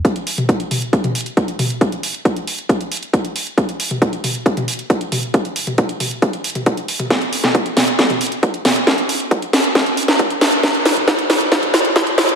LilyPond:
\new DrumStaff \with { instrumentName = "Drums" } \drummode { \time 4/4 \tempo 4 = 136 <hh bd>16 hh16 hho16 <hh toml>16 <hh bd>16 hh16 <hho toml>16 hh16 <hh bd>16 <hh toml>16 hho32 hh32 hh16 <hh bd>16 hh16 <hho toml>16 hh16 | <hh bd>16 hh16 hho16 hh16 <hh bd>16 hh16 hho16 hh16 <hh bd>16 hh16 hho32 hh32 hh16 <hh bd>16 hh16 hho16 hh16 | <hh bd>16 hh16 hho16 <hh toml>16 <hh bd>16 hh16 <hho toml>16 hh16 <hh bd>16 <hh toml>16 hho32 hh32 hh16 <hh bd>16 hh16 <hho toml>16 hh16 | <hh bd>16 hh16 hho16 <hh toml>16 <hh bd>16 hh16 <hho toml>16 hh16 <hh bd>16 hh16 hho32 hh32 <hh toml>16 <hh bd>16 hh16 hho16 <hh toml>16 |
<hh bd sn>16 hh16 hho16 <sn toml>16 <hh bd>16 hh16 <hho sn toml>16 hh16 <hh bd sn>16 <hh toml>16 hho32 hh32 hh16 <hh bd>16 hh16 <hho sn toml>16 hh16 | <hh bd sn>16 hh16 hho16 hh16 <hh bd>16 hh16 <hho sn>16 hh16 <hh bd sn>16 hh16 hho32 hh32 <hh sn>16 <hh bd>16 hh16 <hho sn>16 hh16 | <hh bd sn>16 hh16 <hho sn>16 <hh toml>16 <hh bd sn>16 hh16 <hho sn toml>16 hh16 <hh bd sn>16 <hh toml>16 <hho sn>32 hh32 hh16 <hh bd sn>16 hh16 <hho sn toml>16 hh16 | }